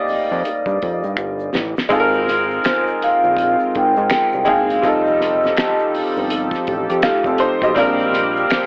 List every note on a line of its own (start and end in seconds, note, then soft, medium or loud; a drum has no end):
0.00 1.92 G3 medium
0.00 1.93 A#3 medium
0.00 1.91 D#4 medium
0.00 1.92 D5 medium
0.00 0.40 D#5 medium
0.00 1.92 F5 loud
0.00 1.92 G5 loud
0.07 0.17 F2 soft
0.07 open hi-hat medium
0.07 shaker soft
0.31 0.43 F2 medium
0.31 shaker soft
0.45 closed hi-hat medium
0.45 shaker medium
0.66 0.79 G2 medium
0.66 kick medium
0.66 shaker soft
0.82 1.03 F2 medium
0.82 kick medium
0.82 closed hi-hat medium
1.04 1.16 G2 medium
1.04 shaker soft
1.17 1.51 G1 medium
1.17 finger snap medium
1.17 shaker medium
1.40 shaker soft
1.53 1.75 A1 medium
1.53 snare medium
1.53 shaker soft
1.77 snare medium
1.77 shaker soft
1.89 2.60 G#1 loud
1.89 3.29 G#3 medium
1.89 4.80 G#3 medium
1.89 4.80 C4 medium
1.89 3.30 C4 medium
1.89 3.30 D#4 medium
1.89 4.80 F4 medium
1.89 3.31 F4 medium
1.89 kick loud
1.89 closed hi-hat loud
1.89 shaker medium
1.93 2.00 A4 medium
2.00 3.35 A#4 loud
2.13 shaker soft
2.27 snare soft
2.27 closed hi-hat medium
2.50 shaker soft
2.64 2.82 C5 medium
2.64 finger snap medium
2.64 snare loud
2.64 closed hi-hat medium
2.64 shaker medium
2.87 shaker medium
3.01 3.10 A#1 soft
3.01 3.77 F5 loud
3.01 closed hi-hat medium
3.23 3.57 A#1 medium
3.23 shaker soft
3.36 kick medium
3.36 closed hi-hat medium
3.36 shaker medium
3.60 shaker medium
3.75 3.96 G#1 loud
3.75 4.43 G5 loud
3.75 kick medium
3.75 closed hi-hat medium
3.97 4.09 G#2 medium
3.97 shaker medium
4.10 finger snap medium
4.10 snare loud
4.10 closed hi-hat medium
4.10 shaker medium
4.32 4.46 C2 loud
4.32 shaker medium
4.44 4.81 G#3 medium
4.44 4.81 C4 medium
4.44 4.82 D#4 medium
4.44 4.82 F4 medium
4.44 4.48 G5 medium
4.44 kick medium
4.44 closed hi-hat medium
4.48 4.81 F#1 loud
4.48 4.83 G#4 medium
4.48 4.86 F5 loud
4.70 closed hi-hat soft
4.70 shaker soft
4.82 5.53 F1 loud
4.82 7.73 F3 medium
4.82 6.22 G3 medium
4.82 6.22 C4 medium
4.82 7.73 D#4 medium
4.82 6.23 D#4 medium
4.82 6.23 F4 medium
4.82 8.66 G4 medium
4.82 7.73 A4 medium
4.82 kick loud
4.82 closed hi-hat medium
4.82 shaker medium
4.86 6.24 A4 medium
4.86 5.91 D#5 medium
5.06 shaker soft
5.20 snare soft
5.20 closed hi-hat medium
5.43 snare soft
5.43 shaker soft
5.57 finger snap medium
5.57 snare loud
5.57 closed hi-hat medium
5.57 shaker medium
5.79 shaker medium
5.94 6.03 G1 soft
5.94 open hi-hat medium
6.16 6.50 G1 loud
6.16 shaker soft
6.30 closed hi-hat loud
6.30 shaker medium
6.51 kick loud
6.51 snare soft
6.51 shaker medium
6.67 6.88 A1 medium
6.67 kick medium
6.67 closed hi-hat medium
6.89 7.02 F2 medium
6.89 7.02 G4 medium
6.89 closed hi-hat medium
6.89 shaker medium
7.02 7.13 F1 soft
7.02 7.25 A3 medium
7.02 7.25 F4 medium
7.02 finger snap medium
7.02 snare loud
7.02 closed hi-hat medium
7.02 shaker medium
7.24 7.37 F1 loud
7.24 7.39 C4 medium
7.24 7.39 A4 medium
7.24 kick loud
7.24 shaker medium
7.38 7.62 D#4 medium
7.38 7.61 C5 medium
7.38 closed hi-hat medium
7.62 7.74 B1 loud
7.62 7.98 G4 medium
7.62 7.98 D#5 medium
7.62 kick loud
7.62 closed hi-hat soft
7.62 shaker medium
7.74 8.45 A#1 loud
7.74 8.66 G3 medium
7.74 8.66 A#3 medium
7.74 8.66 C4 medium
7.74 8.66 C4 loud
7.74 8.66 D4 medium
7.74 8.66 F4 medium
7.74 kick loud
7.74 closed hi-hat loud
7.74 shaker medium
7.79 8.66 A#4 loud
7.99 shaker soft
8.13 snare soft
8.13 closed hi-hat medium
8.36 shaker soft
8.50 8.66 C5 medium
8.50 finger snap medium
8.50 finger snap loud
8.50 snare loud
8.50 closed hi-hat medium
8.50 shaker medium